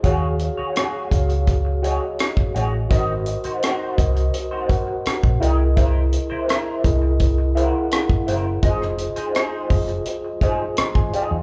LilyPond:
<<
  \new Staff \with { instrumentName = "Tine electric piano" } { \time 4/4 \key ees \dorian \tempo 4 = 84 << { r1 | r1 | r1 | r2. c'''16 aes''16 f''16 ees''16 | } \\ { <ges' aes' des'' f''>4. <ges' aes' des'' f''>4 <ges' aes' des'' ees''>4. | <ges' bes' c'' ees''>4. <ges' bes' c'' ees''>4 <ges' bes' c'' ges''>4 <e' gis' bes' d'' dis''>8~ | <e' gis' bes' d'' dis''>4 r8 <e' gis' bes' dis''>4 <e' gis' bes' f'' ges''>4. | <f' aes' c'' ees''>4. <f' aes' c'' ees''>4 <f' aes' c'' ees''>4. | } >> }
  \new Staff \with { instrumentName = "Clean electric guitar" } { \time 4/4 \key ees \dorian <ges' aes' des''>16 r8 <ges' aes' des''>16 <ges' aes' des''>8 r4 <ges' aes' des''>16 r8. <ges' aes' des''>16 r16 | <ees' ges' ees''>16 r8 <ees' ges' c''>16 <ees' ges' c''>8 r8. <ees' ges' c''>16 r4 <e' bes' dis''>16 r16 | <e' bes' c''>16 r8 <e' bes' c''>16 <e' bes' c''>8 r4 <e' bes' c''>16 r8. <e' bes' c''>16 r16 | <ees' aes' ees''>16 r8 <ees' aes' c''>16 <ees' aes' c''>8 r4 <ees' aes' c''>16 r8. <ees' aes' ees''>16 r16 | }
  \new Staff \with { instrumentName = "Fingered electric bass" } { \clef bass \time 4/4 \key ees \dorian ees,8. r8. des,4~ des,16 r8. a,,8 | aes,,8. r8. c,8 r4 r16 bes,,16 c,8~ | c,8. r8. c,4~ c,16 r8. ges,,8 | f,,8. r8. f,,8 r4 r16 aes,,16 r16 fes,16 | }
  \new DrumStaff \with { instrumentName = "Drums" } \drummode { \time 4/4 <hh bd>8 hh8 <hh ss>8 <hh bd>16 hh16 <hh bd>8 hh8 <hh ss>16 bd16 hh8 | <hh bd>8 hh16 hh16 <hh ss>8 <hh bd>16 hh16 hh8 <hh bd>8 <hh ss>16 bd16 hh8 | <hh bd>8 hh8 <hh ss>8 <hh bd>8 <hh bd>8 hh8 <hh ss>16 bd16 hh8 | <hh bd>16 ss16 hh16 hh16 <hh ss>8 <hho bd>16 hh16 hh8 <hh bd>8 <hh ss>16 bd16 hh8 | }
>>